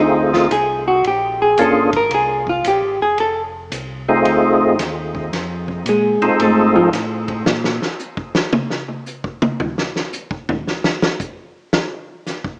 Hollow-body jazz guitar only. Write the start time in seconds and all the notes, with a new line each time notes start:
0.00 D#4
0.34 F4
0.52 G#4
0.88 F#4
1.07 G4
1.42 G#4
1.61 A4
1.97 A#4
2.14 G#4
2.49 F4
2.68 G4
3.02 G#4
3.20 A4
5.89 G#3 G#4
6.42 A3 A4
6.76 F3 F4